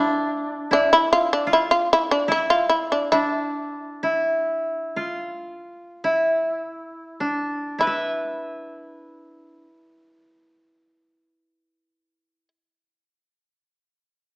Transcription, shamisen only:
0, 0, Header, 1, 2, 480
1, 0, Start_track
1, 0, Tempo, 752823
1, 212, Time_signature, 4, 2, 24, 8
1, 695, Tempo, 807537
1, 1655, Tempo, 862069
1, 2135, Tempo, 911854
1, 2615, Tempo, 993377
1, 3095, Tempo, 1113173
1, 3575, Tempo, 1207243
1, 4535, Tempo, 1153846
1, 5495, Tempo, 1178782
1, 6737, End_track
2, 0, Start_track
2, 0, Title_t, "Shamisen"
2, 0, Program_c, 0, 106
2, 0, Note_on_c, 0, 64, 60
2, 184, Note_off_c, 0, 64, 0
2, 466, Note_on_c, 0, 62, 67
2, 572, Note_off_c, 0, 62, 0
2, 592, Note_on_c, 0, 64, 71
2, 696, Note_off_c, 0, 64, 0
2, 716, Note_on_c, 0, 65, 78
2, 813, Note_off_c, 0, 65, 0
2, 838, Note_on_c, 0, 62, 66
2, 933, Note_off_c, 0, 62, 0
2, 957, Note_on_c, 0, 64, 67
2, 1053, Note_off_c, 0, 64, 0
2, 1064, Note_on_c, 0, 65, 62
2, 1166, Note_off_c, 0, 65, 0
2, 1194, Note_on_c, 0, 64, 76
2, 1293, Note_off_c, 0, 64, 0
2, 1304, Note_on_c, 0, 62, 62
2, 1409, Note_off_c, 0, 62, 0
2, 1424, Note_on_c, 0, 64, 62
2, 1531, Note_off_c, 0, 64, 0
2, 1534, Note_on_c, 0, 65, 62
2, 1646, Note_off_c, 0, 65, 0
2, 1649, Note_on_c, 0, 64, 55
2, 1761, Note_off_c, 0, 64, 0
2, 1774, Note_on_c, 0, 62, 51
2, 1883, Note_off_c, 0, 62, 0
2, 1885, Note_on_c, 0, 64, 59
2, 3555, Note_off_c, 0, 64, 0
2, 4060, Note_on_c, 0, 64, 39
2, 5973, Note_off_c, 0, 64, 0
2, 6737, End_track
0, 0, End_of_file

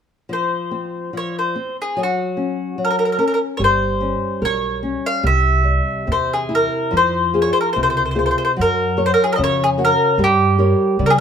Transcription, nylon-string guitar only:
0, 0, Header, 1, 2, 480
1, 0, Start_track
1, 0, Key_signature, -4, "minor"
1, 0, Tempo, 835655
1, 173, Time_signature, 2, 2, 24, 8
1, 1134, Tempo, 814111
1, 3054, Tempo, 846262
1, 4494, Tempo, 811908
1, 6524, End_track
2, 0, Start_track
2, 0, Title_t, "Nylon-string guitar"
2, 0, Program_c, 0, 24
2, 167, Note_on_c, 0, 53, 43
2, 409, Note_on_c, 0, 60, 34
2, 643, Note_off_c, 0, 53, 0
2, 646, Note_off_c, 0, 60, 0
2, 650, Note_on_c, 0, 53, 37
2, 887, Note_off_c, 0, 53, 0
2, 893, Note_on_c, 0, 60, 40
2, 1125, Note_off_c, 0, 60, 0
2, 1129, Note_on_c, 0, 54, 49
2, 1367, Note_on_c, 0, 61, 37
2, 1602, Note_off_c, 0, 54, 0
2, 1602, Note_off_c, 0, 61, 0
2, 1609, Note_on_c, 0, 54, 43
2, 1843, Note_off_c, 0, 54, 0
2, 1847, Note_on_c, 0, 61, 42
2, 2082, Note_off_c, 0, 61, 0
2, 2092, Note_on_c, 0, 55, 47
2, 2332, Note_on_c, 0, 61, 40
2, 2565, Note_off_c, 0, 61, 0
2, 2575, Note_on_c, 0, 70, 46
2, 2808, Note_off_c, 0, 70, 0
2, 2817, Note_on_c, 0, 61, 43
2, 3031, Note_off_c, 0, 55, 0
2, 3049, Note_off_c, 0, 61, 0
2, 3055, Note_on_c, 0, 48, 52
2, 3285, Note_on_c, 0, 55, 41
2, 3524, Note_off_c, 0, 55, 0
2, 3531, Note_on_c, 0, 60, 45
2, 3767, Note_on_c, 0, 64, 47
2, 3771, Note_off_c, 0, 60, 0
2, 3997, Note_off_c, 0, 48, 0
2, 4005, Note_on_c, 0, 53, 54
2, 4006, Note_off_c, 0, 64, 0
2, 4248, Note_on_c, 0, 65, 37
2, 4251, Note_on_c, 0, 68, 37
2, 4255, Note_on_c, 0, 72, 41
2, 4472, Note_off_c, 0, 53, 0
2, 4488, Note_on_c, 0, 48, 54
2, 4634, Note_off_c, 0, 65, 0
2, 4636, Note_off_c, 0, 68, 0
2, 4639, Note_off_c, 0, 72, 0
2, 4719, Note_on_c, 0, 65, 42
2, 4721, Note_on_c, 0, 68, 38
2, 4725, Note_on_c, 0, 72, 47
2, 4920, Note_off_c, 0, 65, 0
2, 4920, Note_off_c, 0, 68, 0
2, 4923, Note_off_c, 0, 72, 0
2, 4962, Note_off_c, 0, 48, 0
2, 4964, Note_on_c, 0, 54, 56
2, 5203, Note_on_c, 0, 66, 40
2, 5204, Note_on_c, 0, 70, 38
2, 5208, Note_on_c, 0, 73, 46
2, 5436, Note_off_c, 0, 54, 0
2, 5445, Note_on_c, 0, 49, 59
2, 5592, Note_off_c, 0, 66, 0
2, 5593, Note_off_c, 0, 70, 0
2, 5595, Note_off_c, 0, 73, 0
2, 5681, Note_on_c, 0, 70, 42
2, 5684, Note_on_c, 0, 66, 44
2, 5687, Note_on_c, 0, 73, 50
2, 5878, Note_off_c, 0, 70, 0
2, 5880, Note_off_c, 0, 66, 0
2, 5882, Note_off_c, 0, 73, 0
2, 5915, Note_off_c, 0, 49, 0
2, 5924, Note_on_c, 0, 55, 57
2, 6157, Note_on_c, 0, 67, 44
2, 6161, Note_on_c, 0, 70, 38
2, 6163, Note_on_c, 0, 73, 48
2, 6392, Note_off_c, 0, 55, 0
2, 6399, Note_on_c, 0, 55, 57
2, 6524, Note_off_c, 0, 55, 0
2, 6524, Note_off_c, 0, 67, 0
2, 6524, Note_off_c, 0, 70, 0
2, 6524, Note_off_c, 0, 73, 0
2, 6524, End_track
0, 0, End_of_file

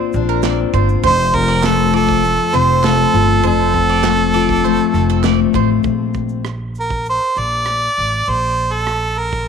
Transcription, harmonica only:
0, 0, Header, 1, 2, 480
1, 0, Start_track
1, 0, Key_signature, -2, "major"
1, 0, Tempo, 602410
1, 829, Time_signature, 4, 2, 24, 8
1, 7554, End_track
2, 0, Start_track
2, 0, Title_t, "Harmonica"
2, 0, Program_c, 0, 22
2, 847, Note_on_c, 0, 72, 119
2, 1080, Note_on_c, 0, 70, 102
2, 1092, Note_off_c, 0, 72, 0
2, 1315, Note_on_c, 0, 69, 98
2, 1327, Note_off_c, 0, 70, 0
2, 1550, Note_off_c, 0, 69, 0
2, 1558, Note_on_c, 0, 69, 100
2, 2034, Note_on_c, 0, 72, 101
2, 2046, Note_off_c, 0, 69, 0
2, 2275, Note_on_c, 0, 69, 99
2, 2287, Note_off_c, 0, 72, 0
2, 2748, Note_off_c, 0, 69, 0
2, 2760, Note_on_c, 0, 69, 90
2, 4158, Note_off_c, 0, 69, 0
2, 5418, Note_on_c, 0, 70, 75
2, 5626, Note_off_c, 0, 70, 0
2, 5651, Note_on_c, 0, 72, 90
2, 5888, Note_on_c, 0, 74, 99
2, 5900, Note_off_c, 0, 72, 0
2, 6606, Note_on_c, 0, 72, 91
2, 6618, Note_off_c, 0, 74, 0
2, 6953, Note_on_c, 0, 69, 81
2, 6965, Note_off_c, 0, 72, 0
2, 7315, Note_on_c, 0, 70, 81
2, 7327, Note_off_c, 0, 69, 0
2, 7554, Note_off_c, 0, 70, 0
2, 7554, End_track
0, 0, End_of_file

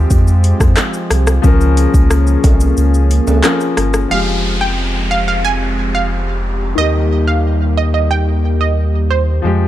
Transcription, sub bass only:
0, 0, Header, 1, 2, 480
1, 0, Start_track
1, 0, Key_signature, -4, "minor"
1, 0, Tempo, 666667
1, 1038, Time_signature, 4, 2, 24, 8
1, 6969, End_track
2, 0, Start_track
2, 0, Title_t, "Sub bass"
2, 0, Program_c, 0, 38
2, 76, Note_on_c, 0, 41, 110
2, 385, Note_off_c, 0, 41, 0
2, 434, Note_on_c, 0, 41, 84
2, 538, Note_off_c, 0, 41, 0
2, 797, Note_on_c, 0, 36, 93
2, 1003, Note_off_c, 0, 36, 0
2, 1037, Note_on_c, 0, 37, 119
2, 1346, Note_off_c, 0, 37, 0
2, 1397, Note_on_c, 0, 37, 101
2, 1706, Note_off_c, 0, 37, 0
2, 1757, Note_on_c, 0, 36, 92
2, 1963, Note_off_c, 0, 36, 0
2, 1998, Note_on_c, 0, 37, 109
2, 2306, Note_off_c, 0, 37, 0
2, 2356, Note_on_c, 0, 37, 91
2, 2460, Note_off_c, 0, 37, 0
2, 2718, Note_on_c, 0, 31, 83
2, 2923, Note_off_c, 0, 31, 0
2, 2958, Note_on_c, 0, 29, 88
2, 4849, Note_off_c, 0, 29, 0
2, 4877, Note_on_c, 0, 39, 84
2, 6769, Note_off_c, 0, 39, 0
2, 6799, Note_on_c, 0, 41, 85
2, 6969, Note_off_c, 0, 41, 0
2, 6969, End_track
0, 0, End_of_file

